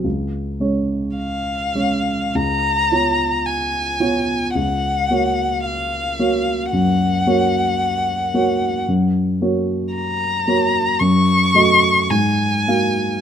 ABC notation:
X:1
M:4/4
L:1/8
Q:1/4=55
K:Db
V:1 name="Violin"
z2 f2 b2 a2 | g2 f2 g4 | z2 b2 d'2 a2 |]
V:2 name="Grand piano"
D,, [A,Dd]2 [A,Dd] D,, [_CFd]2 [CFd] | D,, [B,Gd]2 [B,Gd] G,, [B,Gd]2 [B,Gd] | G,, [B,Gd]2 [B,Gd] G,, [=A,Ge] _A,, [B,Gf] |]